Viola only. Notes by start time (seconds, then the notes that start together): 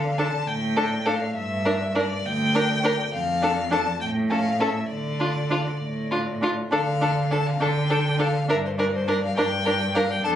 0.18 D4
0.77 D4
1.06 D4
1.65 D4
1.95 D4
2.55 D4
2.83 D4
3.42 D4
3.71 D4
4.30 C#4
4.60 C#4
5.20 D4
5.50 D4
6.11 D4
6.41 D4
6.71 D4
7.01 D4
7.31 D4
7.60 D4
7.90 D4
8.18 D4
8.48 D4
8.78 D4
9.08 D4
9.38 D4
9.66 D4
9.95 D4
10.23 D4